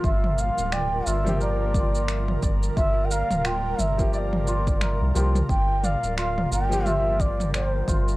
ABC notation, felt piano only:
X:1
M:4/4
L:1/16
Q:"Swing 16ths" 1/4=88
K:Gdor
V:1 name="Felt piano"
[F,B,G]6- [F,B,G] [F,B,G]8- [F,B,G]- | [F,B,G]6- [F,B,G] [F,B,G]6- [F,B,G] [F,B,G] z | z6 z [F,B,G]8- [F,B,G] |]